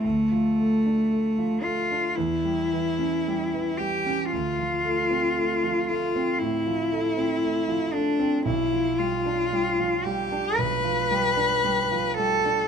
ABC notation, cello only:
X:1
M:4/4
L:1/8
Q:1/4=57
K:Ddor
V:1 name="Cello"
A,3 F E3 G | F3 F E3 D | E F2 G B3 A |]